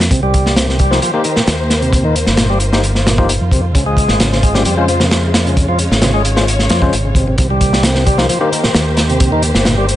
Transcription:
0.00 snare, closed hi-hat
0.11 C2 C3 D#3 A#3 G4 C5, kick, closed hi-hat
0.23 G3
0.34 kick, closed hi-hat
0.46 snare
0.56 C3, snare, closed hi-hat
0.68 C3, snare
0.79 G3, kick, closed hi-hat
0.91 F3 A#3 D#4 G4 C5, snare
1.02 F3, closed hi-hat
1.14 A#3 D#4 G4 C5
1.24 D#3, closed hi-hat
1.36 A#2, muted fingered electric bass stroke, snare
1.47 D#2, snare, closed hi-hat
1.70 snare, closed hi-hat
1.82 C3, closed hi-hat
1.93 F4, kick, closed hi-hat
2.05 D#3
2.16 closed hi-hat
2.26 G1, snare
2.37 A#2, snare, closed hi-hat
2.50 G3
2.60 closed hi-hat
2.73 A#3 D#4 G4 C5, snare
2.83 closed hi-hat
2.95 snare
3.06 A#2, snare, closed hi-hat
3.18 F3 A#3 D#4 G4 C5, kick
3.29 closed hi-hat
3.41 F2
3.51 C3, kick, closed hi-hat
3.75 C#2 C#3 G#3 C5, kick, closed hi-hat
3.86 G#3
3.97 kick, closed hi-hat
4.08 G#1, snare
4.20 C#3, snare, closed hi-hat
4.32 C#3, snare
4.43 G#3, kick, closed hi-hat
4.55 G3 G#3 C#4 F4 C5, snare
4.65 F2 G3, closed hi-hat
4.77 G#3 C#4 F4 C5
4.88 F3, closed hi-hat
5.00 C3, snare
5.11 snare, closed hi-hat
5.34 snare, closed hi-hat
5.46 C#3, closed hi-hat
5.57 C#5, kick, closed hi-hat
5.68 F3
5.79 closed hi-hat
5.91 G#1, snare
6.02 C3, snare, closed hi-hat
6.14 G#3
6.25 closed hi-hat
6.36 G#3 C#4 F4 C5, snare
6.48 closed hi-hat
6.59 snare
6.69 F2 F3, snare, closed hi-hat
6.82 C#3 G#3 C#4 F4 C5, kick
6.93 G#1, closed hi-hat
7.05 C#3
7.15 C3, kick, closed hi-hat
7.28 C3
7.38 C2 C3 D#3 A#3 G4 C5, kick, closed hi-hat
7.50 G3
7.61 kick, closed hi-hat
7.73 snare
7.83 C3, snare, closed hi-hat
7.95 C3, snare
8.06 G3, kick, closed hi-hat
8.18 F3 A#3 D#4 G4 C5, snare
8.29 F3, closed hi-hat
8.41 A#3 D#4 G4 C5
8.52 D#3, closed hi-hat
8.63 A#2, muted fingered electric bass stroke, snare
8.74 D#2, snare, closed hi-hat
8.97 snare, closed hi-hat
9.09 C3, closed hi-hat
9.20 kick, closed hi-hat
9.32 D#3
9.42 closed hi-hat
9.55 G1, snare
9.65 A#2, snare, closed hi-hat
9.78 G3
9.89 closed hi-hat

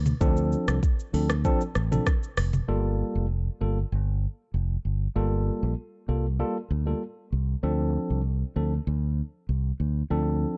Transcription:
Already playing: D2
0.06 mid tom, shaker
0.21 D2 F3 C4 D4 A4, kick, shaker
0.37 shaker
0.52 shaker
0.68 C2, cross-stick, shaker
0.83 kick, shaker
0.99 shaker
1.14 D2 F3 C4 D4 A4, open hi-hat, shaker
1.30 cross-stick, shaker
1.44 F3 C4 D4 A4, kick, shaker
1.61 shaker
1.75 A1, cross-stick, shaker
1.91 F3 C4 D4 A4, mid tom, shaker
2.06 kick, cross-stick, shaker
2.23 shaker
2.37 F1, cross-stick, open hi-hat, shaker
2.53 mid tom, shaker
2.68 G1 G3 A#3 F4 A4
3.15 F1
3.61 G1 G3 A#3 F4 A4
3.92 G1
4.54 F1
4.85 G1
5.16 G1 G3 A#3 F4 A4
5.63 A#1
6.08 C2 G3 A#3 F4 A4
6.39 G3 A#3 F4 A4
6.71 D2
6.86 G3 A#3 F4 A4
7.32 C2
7.63 D2 F3 C4 D4 A4
8.10 C2
8.56 D2 F3 C4 D4 A4
8.87 D2
9.49 C2
9.80 D2
10.10 D2 F3 C4 D4 A4

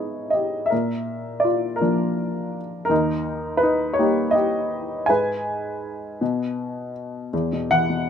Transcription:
Already playing: G#2 G#3 B3 D#4 E4 G#4 B4 C#5 D#5
0.30 G4 D#5
0.66 E5
0.70 A#2 A#4
1.40 D5
1.45 F4
1.76 A#4
1.81 F3 A#3 D4
2.85 A#4
2.89 D#2 D#4
3.57 B4
3.63 D#4
3.94 C#5
3.99 G3 A#3 D#4 G4
4.31 D#5
4.35 G4
5.06 G#2 B4 G#5
6.21 B2
7.33 E2
7.53 B2
7.71 E3 F#5
7.89 B2

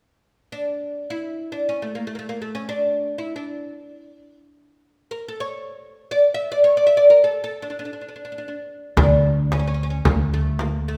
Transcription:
0.52 D4
1.10 E4
1.52 D4
1.69 C#4
1.82 A3
1.95 A#3
2.07 A3
2.15 A3 A#3
2.29 A#3
2.42 A3
2.55 C#4
2.69 D4
3.18 E4
3.36 D4
5.11 A#4
5.28 A4
5.40 C#5
6.11 D5
6.34 E5
6.52 D5
6.64 C#5
6.77 D5
6.87 E5
6.97 D5
7.10 A#4
7.24 A4
7.44 A4
7.62 D4
7.70 D4
7.79 D4
7.85 D4
7.93 D4
8.01 D4
8.08 D4
8.16 D4
8.25 D4
8.32 D4
8.38 D4
8.48 D4
8.97 D2 D4, frame drum
9.52 C#4, frame drum
9.59 C#4
9.67 C#4
9.74 C#4
9.83 C#4
9.90 C#4
10.05 D2 A#3, frame drum
10.34 A3
10.59 A#3, frame drum
10.88 A3

